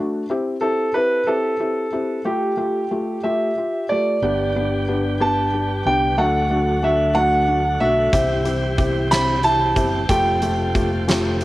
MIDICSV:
0, 0, Header, 1, 6, 480
1, 0, Start_track
1, 0, Key_signature, 1, "major"
1, 0, Tempo, 654308
1, 210, Time_signature, 6, 3, 24, 8
1, 8395, End_track
2, 0, Start_track
2, 0, Title_t, "Grand piano"
2, 0, Program_c, 0, 0
2, 446, Note_on_c, 0, 69, 66
2, 670, Note_off_c, 0, 69, 0
2, 690, Note_on_c, 0, 71, 72
2, 929, Note_on_c, 0, 69, 69
2, 936, Note_off_c, 0, 71, 0
2, 1619, Note_off_c, 0, 69, 0
2, 1652, Note_on_c, 0, 67, 57
2, 2373, Note_on_c, 0, 76, 59
2, 2829, Note_off_c, 0, 67, 0
2, 2855, Note_on_c, 0, 74, 74
2, 2871, Note_off_c, 0, 76, 0
2, 3825, Note_on_c, 0, 81, 76
2, 3847, Note_off_c, 0, 74, 0
2, 4270, Note_off_c, 0, 81, 0
2, 4302, Note_on_c, 0, 79, 78
2, 4534, Note_on_c, 0, 78, 72
2, 4544, Note_off_c, 0, 79, 0
2, 5017, Note_on_c, 0, 76, 68
2, 5024, Note_off_c, 0, 78, 0
2, 5236, Note_off_c, 0, 76, 0
2, 5243, Note_on_c, 0, 78, 88
2, 5725, Note_on_c, 0, 76, 81
2, 5738, Note_off_c, 0, 78, 0
2, 6684, Note_on_c, 0, 83, 99
2, 6712, Note_off_c, 0, 76, 0
2, 6924, Note_on_c, 0, 81, 104
2, 6931, Note_off_c, 0, 83, 0
2, 7402, Note_on_c, 0, 79, 80
2, 7419, Note_off_c, 0, 81, 0
2, 8395, Note_off_c, 0, 79, 0
2, 8395, End_track
3, 0, Start_track
3, 0, Title_t, "Felt piano"
3, 0, Program_c, 1, 0
3, 0, Note_on_c, 1, 57, 51
3, 0, Note_on_c, 1, 62, 49
3, 0, Note_on_c, 1, 66, 52
3, 162, Note_off_c, 1, 57, 0
3, 165, Note_off_c, 1, 62, 0
3, 166, Note_off_c, 1, 66, 0
3, 217, Note_on_c, 1, 60, 58
3, 218, Note_on_c, 1, 64, 51
3, 224, Note_on_c, 1, 67, 69
3, 403, Note_off_c, 1, 60, 0
3, 404, Note_off_c, 1, 64, 0
3, 406, Note_off_c, 1, 67, 0
3, 450, Note_on_c, 1, 60, 53
3, 453, Note_on_c, 1, 64, 48
3, 454, Note_on_c, 1, 67, 60
3, 639, Note_off_c, 1, 60, 0
3, 641, Note_off_c, 1, 64, 0
3, 642, Note_off_c, 1, 67, 0
3, 692, Note_on_c, 1, 60, 46
3, 693, Note_on_c, 1, 64, 45
3, 694, Note_on_c, 1, 67, 58
3, 880, Note_off_c, 1, 60, 0
3, 881, Note_off_c, 1, 64, 0
3, 881, Note_off_c, 1, 67, 0
3, 930, Note_on_c, 1, 60, 61
3, 934, Note_on_c, 1, 64, 55
3, 938, Note_on_c, 1, 67, 61
3, 1119, Note_off_c, 1, 60, 0
3, 1121, Note_off_c, 1, 64, 0
3, 1123, Note_off_c, 1, 67, 0
3, 1172, Note_on_c, 1, 60, 44
3, 1173, Note_on_c, 1, 67, 51
3, 1174, Note_on_c, 1, 64, 45
3, 1360, Note_off_c, 1, 60, 0
3, 1361, Note_off_c, 1, 64, 0
3, 1361, Note_off_c, 1, 67, 0
3, 1412, Note_on_c, 1, 64, 49
3, 1413, Note_on_c, 1, 60, 53
3, 1415, Note_on_c, 1, 67, 52
3, 1600, Note_off_c, 1, 60, 0
3, 1600, Note_off_c, 1, 64, 0
3, 1602, Note_off_c, 1, 67, 0
3, 1649, Note_on_c, 1, 57, 57
3, 1653, Note_on_c, 1, 65, 52
3, 1653, Note_on_c, 1, 67, 64
3, 1839, Note_off_c, 1, 57, 0
3, 1841, Note_off_c, 1, 65, 0
3, 1841, Note_off_c, 1, 67, 0
3, 1884, Note_on_c, 1, 57, 42
3, 1890, Note_on_c, 1, 65, 47
3, 1890, Note_on_c, 1, 67, 49
3, 2078, Note_off_c, 1, 57, 0
3, 2080, Note_off_c, 1, 65, 0
3, 2080, Note_off_c, 1, 67, 0
3, 2135, Note_on_c, 1, 57, 47
3, 2136, Note_on_c, 1, 65, 41
3, 2140, Note_on_c, 1, 67, 46
3, 2324, Note_off_c, 1, 57, 0
3, 2325, Note_off_c, 1, 65, 0
3, 2327, Note_off_c, 1, 67, 0
3, 2375, Note_on_c, 1, 57, 54
3, 2376, Note_on_c, 1, 65, 47
3, 2378, Note_on_c, 1, 67, 60
3, 2566, Note_off_c, 1, 57, 0
3, 2566, Note_off_c, 1, 65, 0
3, 2567, Note_off_c, 1, 67, 0
3, 2622, Note_on_c, 1, 65, 39
3, 2627, Note_on_c, 1, 67, 43
3, 2810, Note_off_c, 1, 65, 0
3, 2812, Note_off_c, 1, 67, 0
3, 2871, Note_on_c, 1, 57, 51
3, 2871, Note_on_c, 1, 65, 42
3, 2874, Note_on_c, 1, 67, 56
3, 3055, Note_off_c, 1, 57, 0
3, 3055, Note_off_c, 1, 65, 0
3, 3056, Note_off_c, 1, 67, 0
3, 3100, Note_on_c, 1, 59, 64
3, 3103, Note_on_c, 1, 62, 59
3, 3107, Note_on_c, 1, 67, 67
3, 3290, Note_off_c, 1, 59, 0
3, 3291, Note_off_c, 1, 62, 0
3, 3293, Note_off_c, 1, 67, 0
3, 3343, Note_on_c, 1, 59, 52
3, 3343, Note_on_c, 1, 62, 42
3, 3345, Note_on_c, 1, 67, 62
3, 3531, Note_off_c, 1, 59, 0
3, 3531, Note_off_c, 1, 62, 0
3, 3533, Note_off_c, 1, 67, 0
3, 3582, Note_on_c, 1, 59, 56
3, 3583, Note_on_c, 1, 62, 46
3, 3584, Note_on_c, 1, 67, 58
3, 3770, Note_off_c, 1, 59, 0
3, 3771, Note_off_c, 1, 62, 0
3, 3772, Note_off_c, 1, 67, 0
3, 3817, Note_on_c, 1, 59, 64
3, 3817, Note_on_c, 1, 62, 58
3, 3821, Note_on_c, 1, 67, 77
3, 4007, Note_off_c, 1, 62, 0
3, 4008, Note_off_c, 1, 59, 0
3, 4009, Note_off_c, 1, 67, 0
3, 4064, Note_on_c, 1, 62, 43
3, 4065, Note_on_c, 1, 67, 55
3, 4250, Note_off_c, 1, 62, 0
3, 4250, Note_off_c, 1, 67, 0
3, 4301, Note_on_c, 1, 59, 54
3, 4302, Note_on_c, 1, 62, 60
3, 4303, Note_on_c, 1, 67, 64
3, 4487, Note_off_c, 1, 59, 0
3, 4488, Note_off_c, 1, 62, 0
3, 4488, Note_off_c, 1, 67, 0
3, 4532, Note_on_c, 1, 57, 77
3, 4533, Note_on_c, 1, 62, 68
3, 4535, Note_on_c, 1, 66, 81
3, 4721, Note_off_c, 1, 57, 0
3, 4722, Note_off_c, 1, 62, 0
3, 4723, Note_off_c, 1, 66, 0
3, 4768, Note_on_c, 1, 57, 55
3, 4771, Note_on_c, 1, 62, 53
3, 4773, Note_on_c, 1, 66, 65
3, 4959, Note_off_c, 1, 57, 0
3, 4960, Note_off_c, 1, 62, 0
3, 4961, Note_off_c, 1, 66, 0
3, 5008, Note_on_c, 1, 57, 54
3, 5011, Note_on_c, 1, 62, 51
3, 5015, Note_on_c, 1, 66, 64
3, 5198, Note_off_c, 1, 57, 0
3, 5199, Note_off_c, 1, 62, 0
3, 5201, Note_off_c, 1, 66, 0
3, 5244, Note_on_c, 1, 57, 72
3, 5249, Note_on_c, 1, 62, 66
3, 5250, Note_on_c, 1, 66, 73
3, 5436, Note_off_c, 1, 57, 0
3, 5438, Note_off_c, 1, 62, 0
3, 5439, Note_off_c, 1, 66, 0
3, 5488, Note_on_c, 1, 62, 45
3, 5492, Note_on_c, 1, 66, 52
3, 5677, Note_off_c, 1, 62, 0
3, 5679, Note_off_c, 1, 66, 0
3, 5728, Note_on_c, 1, 57, 65
3, 5729, Note_on_c, 1, 62, 61
3, 5730, Note_on_c, 1, 66, 71
3, 5917, Note_off_c, 1, 57, 0
3, 5917, Note_off_c, 1, 62, 0
3, 5918, Note_off_c, 1, 66, 0
3, 5961, Note_on_c, 1, 60, 77
3, 5966, Note_on_c, 1, 64, 66
3, 5966, Note_on_c, 1, 67, 83
3, 6153, Note_off_c, 1, 60, 0
3, 6156, Note_off_c, 1, 64, 0
3, 6156, Note_off_c, 1, 67, 0
3, 6194, Note_on_c, 1, 64, 60
3, 6195, Note_on_c, 1, 60, 62
3, 6201, Note_on_c, 1, 67, 66
3, 6390, Note_off_c, 1, 60, 0
3, 6390, Note_off_c, 1, 64, 0
3, 6393, Note_off_c, 1, 67, 0
3, 6437, Note_on_c, 1, 60, 62
3, 6439, Note_on_c, 1, 64, 50
3, 6441, Note_on_c, 1, 67, 75
3, 6630, Note_off_c, 1, 60, 0
3, 6632, Note_off_c, 1, 64, 0
3, 6633, Note_off_c, 1, 67, 0
3, 6680, Note_on_c, 1, 60, 81
3, 6682, Note_on_c, 1, 64, 69
3, 6684, Note_on_c, 1, 67, 87
3, 6872, Note_off_c, 1, 60, 0
3, 6873, Note_off_c, 1, 64, 0
3, 6874, Note_off_c, 1, 67, 0
3, 6924, Note_on_c, 1, 64, 60
3, 6930, Note_on_c, 1, 67, 60
3, 7114, Note_off_c, 1, 64, 0
3, 7117, Note_off_c, 1, 67, 0
3, 7158, Note_on_c, 1, 60, 69
3, 7160, Note_on_c, 1, 67, 79
3, 7161, Note_on_c, 1, 64, 57
3, 7351, Note_off_c, 1, 60, 0
3, 7352, Note_off_c, 1, 67, 0
3, 7353, Note_off_c, 1, 64, 0
3, 7405, Note_on_c, 1, 57, 83
3, 7410, Note_on_c, 1, 65, 75
3, 7412, Note_on_c, 1, 67, 100
3, 7595, Note_off_c, 1, 57, 0
3, 7598, Note_off_c, 1, 65, 0
3, 7599, Note_off_c, 1, 67, 0
3, 7644, Note_on_c, 1, 57, 66
3, 7649, Note_on_c, 1, 65, 54
3, 7649, Note_on_c, 1, 67, 63
3, 7836, Note_off_c, 1, 57, 0
3, 7838, Note_off_c, 1, 65, 0
3, 7839, Note_off_c, 1, 67, 0
3, 7883, Note_on_c, 1, 57, 60
3, 7883, Note_on_c, 1, 65, 54
3, 7885, Note_on_c, 1, 67, 66
3, 8077, Note_off_c, 1, 57, 0
3, 8077, Note_off_c, 1, 65, 0
3, 8078, Note_off_c, 1, 67, 0
3, 8128, Note_on_c, 1, 57, 75
3, 8129, Note_on_c, 1, 65, 74
3, 8132, Note_on_c, 1, 67, 81
3, 8320, Note_off_c, 1, 57, 0
3, 8321, Note_off_c, 1, 65, 0
3, 8322, Note_off_c, 1, 67, 0
3, 8395, End_track
4, 0, Start_track
4, 0, Title_t, "Tonewheel organ"
4, 0, Program_c, 2, 16
4, 3100, Note_on_c, 2, 55, 42
4, 3100, Note_on_c, 2, 67, 53
4, 3101, Note_on_c, 2, 50, 51
4, 3102, Note_on_c, 2, 59, 43
4, 4521, Note_off_c, 2, 55, 0
4, 4521, Note_off_c, 2, 67, 0
4, 4522, Note_off_c, 2, 59, 0
4, 4540, Note_on_c, 2, 54, 49
4, 4545, Note_on_c, 2, 57, 45
4, 4546, Note_on_c, 2, 66, 61
4, 5939, Note_off_c, 2, 50, 0
4, 5954, Note_off_c, 2, 54, 0
4, 5957, Note_off_c, 2, 57, 0
4, 5957, Note_off_c, 2, 66, 0
4, 5967, Note_on_c, 2, 52, 64
4, 5968, Note_on_c, 2, 67, 67
4, 5971, Note_on_c, 2, 60, 53
4, 5973, Note_on_c, 2, 55, 58
4, 7390, Note_off_c, 2, 52, 0
4, 7394, Note_off_c, 2, 55, 0
4, 7410, Note_on_c, 2, 57, 51
4, 7411, Note_on_c, 2, 53, 58
4, 8395, Note_off_c, 2, 53, 0
4, 8395, Note_off_c, 2, 57, 0
4, 8395, Note_off_c, 2, 60, 0
4, 8395, Note_off_c, 2, 67, 0
4, 8395, End_track
5, 0, Start_track
5, 0, Title_t, "Fingered electric bass"
5, 0, Program_c, 3, 33
5, 3094, Note_on_c, 3, 31, 81
5, 4265, Note_off_c, 3, 31, 0
5, 4295, Note_on_c, 3, 36, 67
5, 4519, Note_off_c, 3, 36, 0
5, 4530, Note_on_c, 3, 38, 91
5, 5695, Note_off_c, 3, 38, 0
5, 5726, Note_on_c, 3, 35, 60
5, 5951, Note_off_c, 3, 35, 0
5, 5963, Note_on_c, 3, 36, 89
5, 7133, Note_off_c, 3, 36, 0
5, 7161, Note_on_c, 3, 30, 73
5, 7388, Note_off_c, 3, 30, 0
5, 7402, Note_on_c, 3, 29, 88
5, 8395, Note_off_c, 3, 29, 0
5, 8395, End_track
6, 0, Start_track
6, 0, Title_t, "Drums"
6, 5965, Note_on_c, 9, 36, 86
6, 5965, Note_on_c, 9, 42, 81
6, 6038, Note_off_c, 9, 36, 0
6, 6038, Note_off_c, 9, 42, 0
6, 6202, Note_on_c, 9, 42, 48
6, 6276, Note_off_c, 9, 42, 0
6, 6443, Note_on_c, 9, 36, 75
6, 6444, Note_on_c, 9, 42, 44
6, 6516, Note_off_c, 9, 36, 0
6, 6517, Note_off_c, 9, 42, 0
6, 6687, Note_on_c, 9, 42, 85
6, 6695, Note_on_c, 9, 38, 96
6, 6761, Note_off_c, 9, 42, 0
6, 6769, Note_off_c, 9, 38, 0
6, 6920, Note_on_c, 9, 42, 44
6, 6993, Note_off_c, 9, 42, 0
6, 7162, Note_on_c, 9, 36, 66
6, 7164, Note_on_c, 9, 42, 51
6, 7235, Note_off_c, 9, 36, 0
6, 7238, Note_off_c, 9, 42, 0
6, 7403, Note_on_c, 9, 36, 86
6, 7405, Note_on_c, 9, 42, 84
6, 7476, Note_off_c, 9, 36, 0
6, 7478, Note_off_c, 9, 42, 0
6, 7643, Note_on_c, 9, 42, 55
6, 7716, Note_off_c, 9, 42, 0
6, 7886, Note_on_c, 9, 36, 75
6, 7891, Note_on_c, 9, 42, 49
6, 7960, Note_off_c, 9, 36, 0
6, 7965, Note_off_c, 9, 42, 0
6, 8132, Note_on_c, 9, 42, 85
6, 8140, Note_on_c, 9, 38, 99
6, 8206, Note_off_c, 9, 42, 0
6, 8214, Note_off_c, 9, 38, 0
6, 8368, Note_on_c, 9, 42, 48
6, 8395, Note_off_c, 9, 42, 0
6, 8395, End_track
0, 0, End_of_file